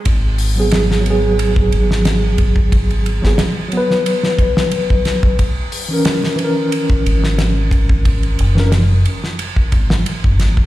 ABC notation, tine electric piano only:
X:1
M:4/4
L:1/16
Q:"Swing 16ths" 1/4=90
K:G#m
V:1 name="Tine electric piano"
z3 [F,B,G]3 [F,B,G]8- [F,B,G]2- | [F,B,G]3 [F,B,G] z2 [F,B,B]8- [F,B,B]2 | z3 [E,CA]3 [E,CA]8- [E,CA]2- | [E,CA]3 [E,CA] z12 |]